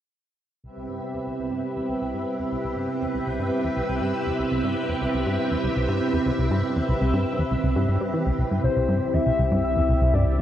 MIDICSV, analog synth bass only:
0, 0, Header, 1, 2, 480
1, 0, Start_track
1, 0, Key_signature, 0, "major"
1, 0, Tempo, 500000
1, 612, Time_signature, 4, 2, 24, 8
1, 10000, End_track
2, 0, Start_track
2, 0, Title_t, "Analog synth bass"
2, 0, Program_c, 0, 38
2, 611, Note_on_c, 0, 36, 72
2, 663, Note_off_c, 0, 36, 0
2, 732, Note_on_c, 0, 36, 67
2, 846, Note_off_c, 0, 36, 0
2, 851, Note_on_c, 0, 43, 90
2, 966, Note_off_c, 0, 43, 0
2, 1092, Note_on_c, 0, 40, 75
2, 1144, Note_off_c, 0, 40, 0
2, 1213, Note_on_c, 0, 36, 67
2, 1264, Note_off_c, 0, 36, 0
2, 1332, Note_on_c, 0, 36, 71
2, 1446, Note_off_c, 0, 36, 0
2, 1451, Note_on_c, 0, 43, 88
2, 1566, Note_off_c, 0, 43, 0
2, 1690, Note_on_c, 0, 40, 69
2, 1743, Note_off_c, 0, 40, 0
2, 1811, Note_on_c, 0, 36, 69
2, 1863, Note_off_c, 0, 36, 0
2, 1932, Note_on_c, 0, 36, 70
2, 2046, Note_off_c, 0, 36, 0
2, 2053, Note_on_c, 0, 43, 88
2, 2167, Note_off_c, 0, 43, 0
2, 2295, Note_on_c, 0, 40, 69
2, 2345, Note_off_c, 0, 40, 0
2, 2415, Note_on_c, 0, 36, 72
2, 2465, Note_off_c, 0, 36, 0
2, 2537, Note_on_c, 0, 36, 74
2, 2648, Note_off_c, 0, 36, 0
2, 2656, Note_on_c, 0, 43, 87
2, 2768, Note_off_c, 0, 43, 0
2, 2896, Note_on_c, 0, 40, 68
2, 2946, Note_off_c, 0, 40, 0
2, 3015, Note_on_c, 0, 36, 76
2, 3065, Note_off_c, 0, 36, 0
2, 3136, Note_on_c, 0, 36, 69
2, 3248, Note_off_c, 0, 36, 0
2, 3257, Note_on_c, 0, 43, 93
2, 3368, Note_off_c, 0, 43, 0
2, 3495, Note_on_c, 0, 40, 77
2, 3545, Note_off_c, 0, 40, 0
2, 3614, Note_on_c, 0, 36, 72
2, 3665, Note_off_c, 0, 36, 0
2, 3733, Note_on_c, 0, 36, 70
2, 3846, Note_off_c, 0, 36, 0
2, 3853, Note_on_c, 0, 43, 93
2, 3967, Note_off_c, 0, 43, 0
2, 4093, Note_on_c, 0, 40, 69
2, 4144, Note_off_c, 0, 40, 0
2, 4214, Note_on_c, 0, 36, 70
2, 4265, Note_off_c, 0, 36, 0
2, 4334, Note_on_c, 0, 36, 69
2, 4447, Note_off_c, 0, 36, 0
2, 4453, Note_on_c, 0, 43, 91
2, 4566, Note_off_c, 0, 43, 0
2, 4692, Note_on_c, 0, 40, 70
2, 4744, Note_off_c, 0, 40, 0
2, 4813, Note_on_c, 0, 36, 69
2, 4864, Note_off_c, 0, 36, 0
2, 4934, Note_on_c, 0, 36, 75
2, 5047, Note_off_c, 0, 36, 0
2, 5053, Note_on_c, 0, 43, 90
2, 5166, Note_off_c, 0, 43, 0
2, 5292, Note_on_c, 0, 40, 67
2, 5344, Note_off_c, 0, 40, 0
2, 5410, Note_on_c, 0, 36, 76
2, 5463, Note_off_c, 0, 36, 0
2, 5532, Note_on_c, 0, 36, 73
2, 5643, Note_off_c, 0, 36, 0
2, 5648, Note_on_c, 0, 43, 93
2, 5764, Note_off_c, 0, 43, 0
2, 5887, Note_on_c, 0, 40, 72
2, 5941, Note_off_c, 0, 40, 0
2, 6008, Note_on_c, 0, 36, 70
2, 6062, Note_off_c, 0, 36, 0
2, 6130, Note_on_c, 0, 36, 68
2, 6245, Note_off_c, 0, 36, 0
2, 6249, Note_on_c, 0, 43, 93
2, 6364, Note_off_c, 0, 43, 0
2, 6490, Note_on_c, 0, 40, 68
2, 6543, Note_off_c, 0, 40, 0
2, 6609, Note_on_c, 0, 36, 70
2, 6662, Note_off_c, 0, 36, 0
2, 6730, Note_on_c, 0, 36, 72
2, 6845, Note_off_c, 0, 36, 0
2, 6849, Note_on_c, 0, 43, 92
2, 6964, Note_off_c, 0, 43, 0
2, 7091, Note_on_c, 0, 40, 69
2, 7143, Note_off_c, 0, 40, 0
2, 7209, Note_on_c, 0, 36, 67
2, 7262, Note_off_c, 0, 36, 0
2, 7328, Note_on_c, 0, 36, 77
2, 7444, Note_off_c, 0, 36, 0
2, 7450, Note_on_c, 0, 43, 96
2, 7561, Note_off_c, 0, 43, 0
2, 7567, Note_on_c, 0, 43, 70
2, 7656, Note_off_c, 0, 43, 0
2, 7688, Note_on_c, 0, 55, 71
2, 7804, Note_off_c, 0, 55, 0
2, 7809, Note_on_c, 0, 52, 75
2, 7925, Note_off_c, 0, 52, 0
2, 7930, Note_on_c, 0, 36, 69
2, 7982, Note_off_c, 0, 36, 0
2, 8052, Note_on_c, 0, 36, 70
2, 8104, Note_off_c, 0, 36, 0
2, 8172, Note_on_c, 0, 43, 74
2, 8258, Note_off_c, 0, 43, 0
2, 8290, Note_on_c, 0, 36, 77
2, 8343, Note_off_c, 0, 36, 0
2, 8411, Note_on_c, 0, 36, 71
2, 8525, Note_off_c, 0, 36, 0
2, 8530, Note_on_c, 0, 43, 95
2, 8645, Note_off_c, 0, 43, 0
2, 8774, Note_on_c, 0, 40, 79
2, 8825, Note_off_c, 0, 40, 0
2, 8891, Note_on_c, 0, 36, 71
2, 8943, Note_off_c, 0, 36, 0
2, 9012, Note_on_c, 0, 36, 73
2, 9126, Note_off_c, 0, 36, 0
2, 9133, Note_on_c, 0, 43, 90
2, 9247, Note_off_c, 0, 43, 0
2, 9372, Note_on_c, 0, 40, 71
2, 9424, Note_off_c, 0, 40, 0
2, 9492, Note_on_c, 0, 36, 74
2, 9544, Note_off_c, 0, 36, 0
2, 9611, Note_on_c, 0, 36, 71
2, 9725, Note_off_c, 0, 36, 0
2, 9729, Note_on_c, 0, 43, 95
2, 9845, Note_off_c, 0, 43, 0
2, 9971, Note_on_c, 0, 40, 71
2, 10000, Note_off_c, 0, 40, 0
2, 10000, End_track
0, 0, End_of_file